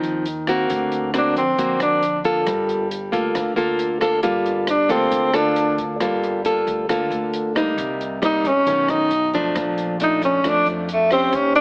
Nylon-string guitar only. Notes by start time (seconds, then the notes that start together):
Already playing: D#3 F3 C4 D#4
0.48 A#3 C4 F#4
0.70 D3
1.14 A#3 C4 F#4
1.58 D3 A#3 C4 F#4
2.25 A#3 F4 A4
2.47 G3
3.12 A#3 F4 A4
3.35 D3
3.56 A#3 F4 A4
4.01 A#3 F4 A4
4.23 G3 A#3 F4 A4
4.89 A#3 F4 A4
5.12 D3
5.33 A#3 F4 A4
6.01 G3 A#3 F4 A4
6.45 A#3 F4 A4
6.89 D3 A#3 F4 A4
7.55 G3 A#3 D#4
7.78 C3
8.22 G3 A#3 D#4
8.67 B2 D#3 A3 C#4
9.34 F3 A3 D4
9.56 A#2
10.01 F3 A3 D4
10.45 F2 F3 A3 D4
11.11 C#4 G4 C5
11.33 D#3